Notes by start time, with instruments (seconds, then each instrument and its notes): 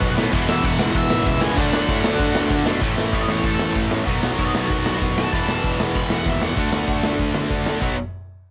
Already playing: distorted electric guitar B2 D#3 F#3 B3 D#4, overdriven electric guitar F#5
0.02 picked electric bass B1, kick, ride
0.17 picked electric bass A2, distorted electric guitar B2 F#3 B3, snare
0.32 picked electric bass E1, distorted electric guitar E2 B2 E3 G#3 B3 E4, kick, ride
0.49 picked electric bass E1, overdriven electric guitar E5, snare
0.64 picked electric bass E1, overdriven electric guitar F#5, kick, ride
0.79 picked electric bass C#2, overdriven electric guitar F#5, snare
0.94 picked electric bass E1, overdriven electric guitar E5, kick, ride
1.10 picked electric bass G#1, snare
1.26 picked electric bass C#2, overdriven electric guitar E5, kick, ride
1.41 picked electric bass C#2, distorted electric guitar E2 B2 E3, overdriven electric guitar G#5, snare
1.56 picked electric bass D2, distorted electric guitar D3 F#3 A3 D4, overdriven electric guitar F#5, kick, ride
1.72 picked electric bass D2, snare
1.88 picked electric bass A2, kick, ride
2.03 picked electric bass D2, snare
2.19 picked electric bass D3, kick, ride
2.35 picked electric bass D2, snare
2.50 picked electric bass D2, kick, snare
2.66 picked electric bass B2, distorted electric guitar D3 A3 D4, snare
2.80 picked electric bass A1, distorted electric guitar A2 E3 A3 C#4 E4, kick, open hi-hat
2.97 picked electric bass A1, snare
3.13 picked electric bass A1, overdriven electric guitar F#4 D#5, kick, open hi-hat
3.28 picked electric bass A1, overdriven electric guitar E4 C#5, snare
3.43 picked electric bass A1, overdriven electric guitar A4, kick, open hi-hat
3.59 picked electric bass A1, snare
3.75 picked electric bass A1, kick, open hi-hat
3.91 snare
4.06 picked electric bass B1, distorted electric guitar B2 D#3 F#3 B3 D#4, kick, open hi-hat
4.23 picked electric bass B1, snare
4.38 picked electric bass B1, overdriven electric guitar F#4 D#5, kick, open hi-hat
4.54 picked electric bass B1, overdriven electric guitar A4 C#5, snare
4.70 picked electric bass B1, overdriven electric guitar F#4, kick, open hi-hat
4.84 picked electric bass B1, snare
5.01 picked electric bass B1, kick, open hi-hat
5.18 overdriven electric guitar A5, snare
5.32 picked electric bass E1, distorted electric guitar E2 B2 E3 G#3 B3 E4, kick, open hi-hat
5.48 picked electric bass E1, snare
5.64 picked electric bass E1, kick, open hi-hat
5.79 picked electric bass E1, snare
5.95 picked electric bass E1, overdriven electric guitar B5, kick, open hi-hat
6.10 picked electric bass E1, overdriven electric guitar F#5, snare
6.26 picked electric bass D#2, overdriven electric guitar E5, kick, open hi-hat
6.42 overdriven electric guitar F#5, snare
6.56 picked electric bass D2, distorted electric guitar D3 A3 D4 F#4, kick, open hi-hat
6.72 picked electric bass D2, snare
6.88 picked electric bass D2, kick, open hi-hat
7.04 picked electric bass D2, snare
7.19 picked electric bass D2, kick, open hi-hat
7.34 picked electric bass D2, snare
7.50 picked electric bass D2, kick, open hi-hat
7.66 snare
7.80 picked electric bass B1, distorted electric guitar B2 F#3 B3 D#4, kick, crash